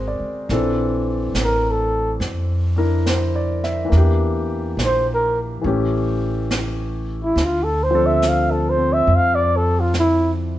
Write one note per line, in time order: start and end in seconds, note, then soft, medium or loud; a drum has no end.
0.00 0.16 G#1 medium
0.00 0.49 G#3 soft
0.00 0.49 C4 soft
0.00 0.50 F#4 soft
0.00 0.50 A#4 soft
0.00 0.31 C5 soft
0.08 0.67 D5 soft
0.20 muted upright bass stroke soft
0.49 1.31 A#1 medium
0.49 3.83 E3 soft
0.49 3.93 C4 soft
0.49 2.75 D4 soft
0.49 3.93 A4 soft
0.49 brush sweep soft
0.49 snare soft
1.34 2.16 A1 medium
1.34 snare soft
1.34 hi-hat pedal soft
1.44 1.72 A#4 medium
1.71 2.14 A4 medium
2.20 3.88 F2 medium
2.20 brush sweep soft
2.20 snare soft
2.76 3.91 D4 soft
2.76 3.92 E4 soft
2.76 3.93 A#4 soft
3.06 3.59 C5 soft
3.06 snare soft
3.06 hi-hat pedal soft
3.35 3.79 D5 soft
3.64 4.08 E5 soft
3.64 snare soft
3.85 5.60 E3 soft
3.85 5.62 A#3 soft
3.92 4.73 E2 medium
3.92 5.64 D4 soft
3.92 brush sweep soft
3.92 snare soft
3.97 5.65 G4 soft
4.77 5.59 A#1 medium
4.77 snare soft
4.77 hi-hat pedal soft
4.85 5.08 C5 medium
5.14 5.40 A#4 medium
5.61 7.32 A1 medium
5.61 7.35 E3 soft
5.61 7.35 A3 soft
5.61 7.36 C#4 soft
5.61 brush sweep soft
5.66 7.37 G4 soft
6.51 snare soft
6.51 hi-hat pedal soft
7.23 7.46 E4 medium
7.36 9.04 D2 medium
7.36 brush sweep soft
7.36 snare soft
7.45 7.65 F4 medium
7.63 7.85 A4 medium
7.83 8.08 C5 medium
7.91 10.59 F3 soft
7.91 8.76 C4 soft
7.91 10.59 D4 soft
7.95 10.59 A4 soft
8.06 8.30 E5 medium
8.22 snare soft
8.22 hi-hat pedal soft
8.29 8.52 F5 medium
8.51 8.71 A4 medium
8.70 8.95 C5 medium
8.77 10.59 C4 soft
8.93 9.17 E5 medium
9.07 10.59 F2 medium
9.07 brush sweep soft
9.16 9.36 F5 medium
9.35 9.58 D5 medium
9.57 9.82 A4 medium
9.80 9.94 F4 medium
9.94 snare soft
9.94 hi-hat pedal soft
9.99 10.32 E4 medium